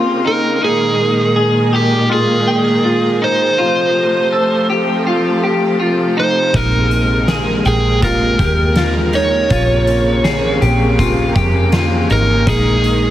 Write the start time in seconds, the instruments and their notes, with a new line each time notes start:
Already playing: string section C#3 A#3 C4, clean electric guitar F4
0.25 clean electric guitar D#4, electric slide guitar A#4
0.62 string section A#2 D#3 G#3, clean electric guitar D#4, electric slide guitar G#4
1.36 clean electric guitar G#4
1.73 clean electric guitar G4, electric slide guitar G4
2.10 clean electric guitar F4, electric slide guitar G#4
2.47 clean electric guitar G5
2.84 clean electric guitar F4
3.22 clean electric guitar D#4, electric slide guitar C5
3.58 string section C3 F3 A3, clean electric guitar F4
4.32 clean electric guitar A4
4.70 clean electric guitar G4
5.07 clean electric guitar F4
5.43 clean electric guitar G4
5.80 clean electric guitar F4
6.17 clean electric guitar D#4, electric slide guitar C5
6.54 fingered electric bass A#1, string section G#3 A#3, clean electric guitar D#4, electric slide guitar A#4, kick, closed hi-hat
6.91 closed hi-hat
7.28 clean electric guitar G#4, snare, closed hi-hat
7.65 fingered electric bass A#1, electric slide guitar G#4, clean electric guitar G5, closed hi-hat
8.02 clean electric guitar F4, electric slide guitar A#4, kick, closed hi-hat
8.39 fingered electric bass D#2, clean electric guitar G4, kick, closed hi-hat
8.76 clean electric guitar F4, snare, closed hi-hat
9.13 clean electric guitar D#4, electric slide guitar C#5, closed hi-hat
9.50 fingered electric bass A#1, string section C3 C#3, clean electric guitar F4, kick, closed hi-hat
9.87 closed hi-hat
10.24 clean electric guitar G#4, snare, closed hi-hat
10.61 fingered electric bass A#1, clean electric guitar G4, closed hi-hat
10.99 clean electric guitar F4, kick, closed hi-hat
11.35 fingered electric bass F2, clean electric guitar G4, kick, closed hi-hat
11.72 clean electric guitar F4, snare, closed hi-hat
12.10 fingered electric bass G#1, clean electric guitar D#4, electric slide guitar A#4, closed hi-hat
12.47 fingered electric bass A#1, string section D#3 G#3, clean electric guitar D#4, electric slide guitar G#4, kick, closed hi-hat
12.84 closed hi-hat